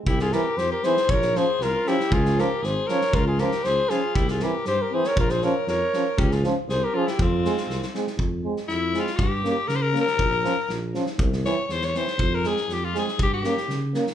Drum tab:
SD |-oo-o-oo|-oo-o-oo|-oo-o-oo|--ooo-o-|
BD |o-------|o-------|o-------|o-------|

SD |-oo-o--o|-oo-o-o-|-oo-o--o|--oooooo|
BD |o-------|o-------|o-------|o-------|

SD |---oo-oo|--o-o-oo|--o-o-oo|-oo-oooo|
BD |o-------|o-------|o-------|o-------|

SD |--ooo-oo|--ooo-oo|
BD |o-------|o-------|